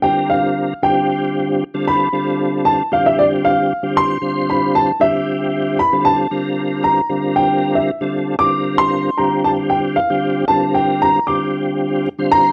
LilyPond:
<<
  \new Staff \with { instrumentName = "Grand piano" } { \time 4/4 \key g \minor \tempo 4 = 115 g''8 f''4 g''2 b''8~ | b''4 a''8 f''16 e''16 d''8 f''4 c'''8~ | c'''8 b''8 a''8 e''4. b''8 a''8~ | a''4 bes''4 g''8. e''8. r8 |
d'''8. c'''8. bes''8 a''8 g''8 f''4 | a''8 g''8 bes''8 d'''4. r8 bes''8 | }
  \new Staff \with { instrumentName = "Tonewheel organ" } { \time 4/4 \key g \minor <d g c' f' bes'>4~ <d g c' f' bes'>16 r16 <d g c' f' g'>4. r16 <d g c' f' a'>8. | <d g c' f' a'>4~ <d g c' f' a'>16 r16 <d g c' f' g'>4. r16 <d g c' f' g'>8. | <d g c' f' c''>4~ <d g c' f' c''>16 r16 <d g c' f' g'>4. r16 <d g c' f' a'>8. | <d g c' f' bes'>4~ <d g c' f' bes'>16 r16 <d g c' f' bes'>4. r16 <d g c' f' a'>8. |
<d g c' f' bes'>4~ <d g c' f' bes'>16 r16 <d g c' f' g'>4. r16 <d g c' f' g'>8. | <d g c' f' bes'>4~ <d g c' f' bes'>16 r16 <d g c' f' g'>4. r16 <d g c' f' c''>8. | }
>>